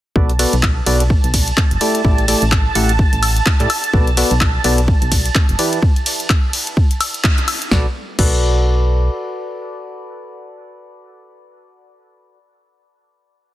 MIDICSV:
0, 0, Header, 1, 5, 480
1, 0, Start_track
1, 0, Key_signature, 2, "minor"
1, 0, Tempo, 472441
1, 158, Time_signature, 4, 2, 24, 8
1, 13757, End_track
2, 0, Start_track
2, 0, Title_t, "Analog synth pad"
2, 0, Program_c, 0, 89
2, 158, Note_on_c, 0, 81, 88
2, 7850, Note_off_c, 0, 81, 0
2, 13757, End_track
3, 0, Start_track
3, 0, Title_t, "Synth stab"
3, 0, Program_c, 1, 62
3, 159, Note_on_c, 1, 59, 74
3, 159, Note_on_c, 1, 66, 68
3, 159, Note_on_c, 1, 69, 67
3, 159, Note_on_c, 1, 71, 68
3, 159, Note_on_c, 1, 74, 80
3, 321, Note_off_c, 1, 59, 0
3, 321, Note_off_c, 1, 66, 0
3, 321, Note_off_c, 1, 69, 0
3, 321, Note_off_c, 1, 71, 0
3, 321, Note_off_c, 1, 74, 0
3, 398, Note_on_c, 1, 66, 81
3, 398, Note_on_c, 1, 71, 80
3, 398, Note_on_c, 1, 74, 99
3, 399, Note_on_c, 1, 59, 86
3, 399, Note_on_c, 1, 69, 84
3, 560, Note_off_c, 1, 66, 0
3, 560, Note_off_c, 1, 71, 0
3, 561, Note_off_c, 1, 59, 0
3, 561, Note_off_c, 1, 69, 0
3, 561, Note_off_c, 1, 74, 0
3, 879, Note_on_c, 1, 59, 94
3, 879, Note_on_c, 1, 66, 83
3, 879, Note_on_c, 1, 69, 85
3, 879, Note_on_c, 1, 71, 87
3, 879, Note_on_c, 1, 74, 103
3, 1041, Note_off_c, 1, 59, 0
3, 1041, Note_off_c, 1, 66, 0
3, 1041, Note_off_c, 1, 69, 0
3, 1041, Note_off_c, 1, 71, 0
3, 1041, Note_off_c, 1, 74, 0
3, 1839, Note_on_c, 1, 57, 82
3, 1839, Note_on_c, 1, 64, 72
3, 1839, Note_on_c, 1, 67, 74
3, 1839, Note_on_c, 1, 69, 73
3, 1839, Note_on_c, 1, 74, 89
3, 2049, Note_off_c, 1, 57, 0
3, 2049, Note_off_c, 1, 64, 0
3, 2049, Note_off_c, 1, 67, 0
3, 2049, Note_off_c, 1, 69, 0
3, 2049, Note_off_c, 1, 74, 0
3, 2077, Note_on_c, 1, 57, 76
3, 2077, Note_on_c, 1, 67, 72
3, 2078, Note_on_c, 1, 64, 71
3, 2078, Note_on_c, 1, 69, 70
3, 2078, Note_on_c, 1, 74, 84
3, 2288, Note_off_c, 1, 57, 0
3, 2288, Note_off_c, 1, 64, 0
3, 2288, Note_off_c, 1, 67, 0
3, 2288, Note_off_c, 1, 69, 0
3, 2288, Note_off_c, 1, 74, 0
3, 2318, Note_on_c, 1, 57, 92
3, 2318, Note_on_c, 1, 64, 78
3, 2318, Note_on_c, 1, 67, 82
3, 2318, Note_on_c, 1, 69, 79
3, 2318, Note_on_c, 1, 74, 96
3, 2480, Note_off_c, 1, 57, 0
3, 2480, Note_off_c, 1, 64, 0
3, 2480, Note_off_c, 1, 67, 0
3, 2480, Note_off_c, 1, 69, 0
3, 2480, Note_off_c, 1, 74, 0
3, 2799, Note_on_c, 1, 57, 92
3, 2799, Note_on_c, 1, 64, 81
3, 2799, Note_on_c, 1, 67, 80
3, 2799, Note_on_c, 1, 69, 82
3, 2799, Note_on_c, 1, 78, 102
3, 2961, Note_off_c, 1, 57, 0
3, 2961, Note_off_c, 1, 64, 0
3, 2961, Note_off_c, 1, 67, 0
3, 2961, Note_off_c, 1, 69, 0
3, 2961, Note_off_c, 1, 78, 0
3, 3659, Note_on_c, 1, 67, 72
3, 3659, Note_on_c, 1, 74, 86
3, 3660, Note_on_c, 1, 64, 79
3, 3660, Note_on_c, 1, 69, 72
3, 3746, Note_off_c, 1, 64, 0
3, 3746, Note_off_c, 1, 67, 0
3, 3746, Note_off_c, 1, 69, 0
3, 3746, Note_off_c, 1, 74, 0
3, 3998, Note_on_c, 1, 59, 74
3, 3998, Note_on_c, 1, 66, 68
3, 3998, Note_on_c, 1, 69, 69
3, 3998, Note_on_c, 1, 71, 67
3, 3998, Note_on_c, 1, 74, 80
3, 4160, Note_off_c, 1, 59, 0
3, 4160, Note_off_c, 1, 66, 0
3, 4160, Note_off_c, 1, 69, 0
3, 4160, Note_off_c, 1, 71, 0
3, 4160, Note_off_c, 1, 74, 0
3, 4239, Note_on_c, 1, 59, 84
3, 4239, Note_on_c, 1, 66, 84
3, 4239, Note_on_c, 1, 69, 81
3, 4239, Note_on_c, 1, 71, 81
3, 4239, Note_on_c, 1, 74, 98
3, 4400, Note_off_c, 1, 71, 0
3, 4401, Note_off_c, 1, 59, 0
3, 4401, Note_off_c, 1, 66, 0
3, 4401, Note_off_c, 1, 69, 0
3, 4401, Note_off_c, 1, 74, 0
3, 4718, Note_on_c, 1, 59, 94
3, 4718, Note_on_c, 1, 66, 82
3, 4718, Note_on_c, 1, 74, 104
3, 4719, Note_on_c, 1, 69, 87
3, 4719, Note_on_c, 1, 71, 83
3, 4880, Note_off_c, 1, 59, 0
3, 4880, Note_off_c, 1, 66, 0
3, 4880, Note_off_c, 1, 74, 0
3, 4881, Note_off_c, 1, 69, 0
3, 4881, Note_off_c, 1, 71, 0
3, 5678, Note_on_c, 1, 52, 79
3, 5678, Note_on_c, 1, 67, 73
3, 5678, Note_on_c, 1, 71, 75
3, 5679, Note_on_c, 1, 64, 72
3, 5679, Note_on_c, 1, 74, 86
3, 5888, Note_off_c, 1, 67, 0
3, 5889, Note_off_c, 1, 52, 0
3, 5889, Note_off_c, 1, 64, 0
3, 5889, Note_off_c, 1, 71, 0
3, 5889, Note_off_c, 1, 74, 0
3, 7838, Note_on_c, 1, 66, 88
3, 7838, Note_on_c, 1, 69, 80
3, 7838, Note_on_c, 1, 74, 97
3, 7839, Note_on_c, 1, 71, 77
3, 7987, Note_off_c, 1, 69, 0
3, 7988, Note_off_c, 1, 66, 0
3, 7988, Note_off_c, 1, 71, 0
3, 7988, Note_off_c, 1, 74, 0
3, 8318, Note_on_c, 1, 66, 89
3, 8318, Note_on_c, 1, 69, 82
3, 8318, Note_on_c, 1, 71, 81
3, 8318, Note_on_c, 1, 74, 97
3, 12583, Note_off_c, 1, 69, 0
3, 12583, Note_off_c, 1, 71, 0
3, 12583, Note_off_c, 1, 74, 0
3, 12584, Note_off_c, 1, 66, 0
3, 13757, End_track
4, 0, Start_track
4, 0, Title_t, "FM bass"
4, 0, Program_c, 2, 39
4, 159, Note_on_c, 2, 35, 103
4, 466, Note_off_c, 2, 35, 0
4, 539, Note_on_c, 2, 35, 104
4, 826, Note_off_c, 2, 35, 0
4, 877, Note_on_c, 2, 35, 100
4, 1185, Note_off_c, 2, 35, 0
4, 1259, Note_on_c, 2, 35, 98
4, 1546, Note_off_c, 2, 35, 0
4, 1739, Note_on_c, 2, 30, 88
4, 1805, Note_off_c, 2, 30, 0
4, 2078, Note_on_c, 2, 33, 98
4, 2385, Note_off_c, 2, 33, 0
4, 2459, Note_on_c, 2, 33, 99
4, 2746, Note_off_c, 2, 33, 0
4, 2797, Note_on_c, 2, 33, 96
4, 3105, Note_off_c, 2, 33, 0
4, 3178, Note_on_c, 2, 33, 96
4, 3465, Note_off_c, 2, 33, 0
4, 3658, Note_on_c, 2, 45, 90
4, 3725, Note_off_c, 2, 45, 0
4, 3998, Note_on_c, 2, 35, 103
4, 4305, Note_off_c, 2, 35, 0
4, 4378, Note_on_c, 2, 35, 106
4, 4666, Note_off_c, 2, 35, 0
4, 4718, Note_on_c, 2, 35, 98
4, 5025, Note_off_c, 2, 35, 0
4, 5098, Note_on_c, 2, 35, 95
4, 5386, Note_off_c, 2, 35, 0
4, 5578, Note_on_c, 2, 30, 86
4, 5645, Note_off_c, 2, 30, 0
4, 7838, Note_on_c, 2, 35, 98
4, 7988, Note_off_c, 2, 35, 0
4, 8318, Note_on_c, 2, 35, 97
4, 9238, Note_off_c, 2, 35, 0
4, 13757, End_track
5, 0, Start_track
5, 0, Title_t, "Drums"
5, 159, Note_on_c, 9, 36, 123
5, 261, Note_off_c, 9, 36, 0
5, 300, Note_on_c, 9, 42, 37
5, 399, Note_on_c, 9, 46, 104
5, 399, Note_on_c, 9, 51, 80
5, 401, Note_off_c, 9, 42, 0
5, 501, Note_off_c, 9, 46, 0
5, 501, Note_off_c, 9, 51, 0
5, 540, Note_on_c, 9, 42, 69
5, 639, Note_on_c, 9, 36, 117
5, 639, Note_on_c, 9, 39, 127
5, 639, Note_on_c, 9, 76, 60
5, 642, Note_off_c, 9, 42, 0
5, 740, Note_off_c, 9, 76, 0
5, 741, Note_off_c, 9, 36, 0
5, 741, Note_off_c, 9, 39, 0
5, 879, Note_on_c, 9, 46, 110
5, 879, Note_on_c, 9, 51, 81
5, 980, Note_off_c, 9, 46, 0
5, 980, Note_off_c, 9, 51, 0
5, 1020, Note_on_c, 9, 42, 74
5, 1119, Note_on_c, 9, 36, 119
5, 1121, Note_off_c, 9, 42, 0
5, 1221, Note_off_c, 9, 36, 0
5, 1260, Note_on_c, 9, 42, 56
5, 1358, Note_on_c, 9, 46, 104
5, 1358, Note_on_c, 9, 51, 78
5, 1359, Note_on_c, 9, 36, 65
5, 1361, Note_off_c, 9, 42, 0
5, 1460, Note_off_c, 9, 46, 0
5, 1460, Note_off_c, 9, 51, 0
5, 1461, Note_off_c, 9, 36, 0
5, 1499, Note_on_c, 9, 42, 69
5, 1599, Note_on_c, 9, 36, 118
5, 1599, Note_on_c, 9, 39, 124
5, 1601, Note_off_c, 9, 42, 0
5, 1700, Note_off_c, 9, 36, 0
5, 1700, Note_off_c, 9, 39, 0
5, 1740, Note_on_c, 9, 42, 53
5, 1838, Note_on_c, 9, 46, 107
5, 1838, Note_on_c, 9, 51, 78
5, 1841, Note_off_c, 9, 42, 0
5, 1940, Note_off_c, 9, 46, 0
5, 1940, Note_off_c, 9, 51, 0
5, 1979, Note_on_c, 9, 42, 72
5, 2079, Note_on_c, 9, 36, 127
5, 2081, Note_off_c, 9, 42, 0
5, 2180, Note_off_c, 9, 36, 0
5, 2219, Note_on_c, 9, 42, 38
5, 2318, Note_on_c, 9, 46, 116
5, 2318, Note_on_c, 9, 51, 75
5, 2321, Note_off_c, 9, 42, 0
5, 2420, Note_off_c, 9, 46, 0
5, 2420, Note_off_c, 9, 51, 0
5, 2459, Note_on_c, 9, 42, 67
5, 2557, Note_on_c, 9, 76, 63
5, 2558, Note_on_c, 9, 39, 127
5, 2559, Note_on_c, 9, 36, 122
5, 2560, Note_off_c, 9, 42, 0
5, 2659, Note_off_c, 9, 39, 0
5, 2659, Note_off_c, 9, 76, 0
5, 2660, Note_off_c, 9, 36, 0
5, 2798, Note_on_c, 9, 46, 115
5, 2798, Note_on_c, 9, 51, 76
5, 2899, Note_off_c, 9, 46, 0
5, 2899, Note_off_c, 9, 51, 0
5, 2939, Note_on_c, 9, 42, 68
5, 3039, Note_on_c, 9, 36, 127
5, 3040, Note_off_c, 9, 42, 0
5, 3140, Note_off_c, 9, 36, 0
5, 3179, Note_on_c, 9, 42, 54
5, 3277, Note_on_c, 9, 46, 117
5, 3277, Note_on_c, 9, 51, 78
5, 3277, Note_on_c, 9, 76, 64
5, 3280, Note_off_c, 9, 42, 0
5, 3379, Note_off_c, 9, 46, 0
5, 3379, Note_off_c, 9, 51, 0
5, 3379, Note_off_c, 9, 76, 0
5, 3419, Note_on_c, 9, 42, 71
5, 3518, Note_on_c, 9, 39, 127
5, 3519, Note_on_c, 9, 36, 126
5, 3520, Note_off_c, 9, 42, 0
5, 3620, Note_off_c, 9, 36, 0
5, 3620, Note_off_c, 9, 39, 0
5, 3659, Note_on_c, 9, 39, 39
5, 3659, Note_on_c, 9, 42, 53
5, 3758, Note_on_c, 9, 46, 115
5, 3758, Note_on_c, 9, 51, 75
5, 3758, Note_on_c, 9, 76, 66
5, 3761, Note_off_c, 9, 39, 0
5, 3761, Note_off_c, 9, 42, 0
5, 3859, Note_off_c, 9, 46, 0
5, 3859, Note_off_c, 9, 51, 0
5, 3859, Note_off_c, 9, 76, 0
5, 3900, Note_on_c, 9, 42, 70
5, 3998, Note_on_c, 9, 36, 127
5, 4001, Note_off_c, 9, 42, 0
5, 4100, Note_off_c, 9, 36, 0
5, 4140, Note_on_c, 9, 42, 38
5, 4239, Note_on_c, 9, 46, 113
5, 4239, Note_on_c, 9, 51, 76
5, 4241, Note_off_c, 9, 42, 0
5, 4340, Note_off_c, 9, 46, 0
5, 4340, Note_off_c, 9, 51, 0
5, 4379, Note_on_c, 9, 42, 65
5, 4478, Note_on_c, 9, 36, 125
5, 4478, Note_on_c, 9, 76, 64
5, 4479, Note_on_c, 9, 39, 127
5, 4481, Note_off_c, 9, 42, 0
5, 4580, Note_off_c, 9, 36, 0
5, 4580, Note_off_c, 9, 39, 0
5, 4580, Note_off_c, 9, 76, 0
5, 4718, Note_on_c, 9, 46, 114
5, 4718, Note_on_c, 9, 51, 78
5, 4819, Note_off_c, 9, 46, 0
5, 4819, Note_off_c, 9, 51, 0
5, 4859, Note_on_c, 9, 42, 66
5, 4958, Note_on_c, 9, 36, 127
5, 4960, Note_off_c, 9, 42, 0
5, 5060, Note_off_c, 9, 36, 0
5, 5099, Note_on_c, 9, 42, 51
5, 5198, Note_on_c, 9, 36, 67
5, 5198, Note_on_c, 9, 46, 110
5, 5198, Note_on_c, 9, 51, 77
5, 5200, Note_off_c, 9, 42, 0
5, 5300, Note_off_c, 9, 36, 0
5, 5300, Note_off_c, 9, 46, 0
5, 5300, Note_off_c, 9, 51, 0
5, 5339, Note_on_c, 9, 42, 66
5, 5437, Note_on_c, 9, 39, 127
5, 5438, Note_on_c, 9, 36, 126
5, 5441, Note_off_c, 9, 42, 0
5, 5539, Note_off_c, 9, 39, 0
5, 5540, Note_off_c, 9, 36, 0
5, 5579, Note_on_c, 9, 42, 50
5, 5678, Note_on_c, 9, 46, 112
5, 5678, Note_on_c, 9, 51, 79
5, 5680, Note_off_c, 9, 42, 0
5, 5779, Note_off_c, 9, 46, 0
5, 5779, Note_off_c, 9, 51, 0
5, 5819, Note_on_c, 9, 42, 64
5, 5918, Note_on_c, 9, 36, 127
5, 5920, Note_off_c, 9, 42, 0
5, 6020, Note_off_c, 9, 36, 0
5, 6059, Note_on_c, 9, 42, 36
5, 6158, Note_on_c, 9, 46, 111
5, 6158, Note_on_c, 9, 51, 78
5, 6161, Note_off_c, 9, 42, 0
5, 6259, Note_off_c, 9, 46, 0
5, 6259, Note_off_c, 9, 51, 0
5, 6299, Note_on_c, 9, 42, 64
5, 6398, Note_on_c, 9, 36, 125
5, 6398, Note_on_c, 9, 39, 122
5, 6398, Note_on_c, 9, 76, 65
5, 6400, Note_off_c, 9, 42, 0
5, 6499, Note_off_c, 9, 76, 0
5, 6500, Note_off_c, 9, 36, 0
5, 6500, Note_off_c, 9, 39, 0
5, 6638, Note_on_c, 9, 46, 113
5, 6638, Note_on_c, 9, 51, 78
5, 6739, Note_off_c, 9, 46, 0
5, 6739, Note_off_c, 9, 51, 0
5, 6778, Note_on_c, 9, 42, 65
5, 6878, Note_on_c, 9, 36, 127
5, 6880, Note_off_c, 9, 42, 0
5, 6980, Note_off_c, 9, 36, 0
5, 7018, Note_on_c, 9, 42, 53
5, 7117, Note_on_c, 9, 46, 111
5, 7117, Note_on_c, 9, 51, 77
5, 7117, Note_on_c, 9, 76, 69
5, 7120, Note_off_c, 9, 42, 0
5, 7219, Note_off_c, 9, 46, 0
5, 7219, Note_off_c, 9, 51, 0
5, 7219, Note_off_c, 9, 76, 0
5, 7258, Note_on_c, 9, 42, 65
5, 7358, Note_on_c, 9, 36, 126
5, 7358, Note_on_c, 9, 39, 120
5, 7360, Note_off_c, 9, 42, 0
5, 7460, Note_off_c, 9, 36, 0
5, 7460, Note_off_c, 9, 39, 0
5, 7499, Note_on_c, 9, 42, 48
5, 7500, Note_on_c, 9, 39, 35
5, 7598, Note_on_c, 9, 46, 112
5, 7598, Note_on_c, 9, 51, 80
5, 7598, Note_on_c, 9, 76, 67
5, 7601, Note_off_c, 9, 39, 0
5, 7601, Note_off_c, 9, 42, 0
5, 7699, Note_off_c, 9, 46, 0
5, 7699, Note_off_c, 9, 51, 0
5, 7699, Note_off_c, 9, 76, 0
5, 7739, Note_on_c, 9, 42, 67
5, 7838, Note_on_c, 9, 36, 118
5, 7838, Note_on_c, 9, 38, 85
5, 7841, Note_off_c, 9, 42, 0
5, 7940, Note_off_c, 9, 36, 0
5, 7940, Note_off_c, 9, 38, 0
5, 8318, Note_on_c, 9, 36, 110
5, 8318, Note_on_c, 9, 49, 92
5, 8420, Note_off_c, 9, 36, 0
5, 8420, Note_off_c, 9, 49, 0
5, 13757, End_track
0, 0, End_of_file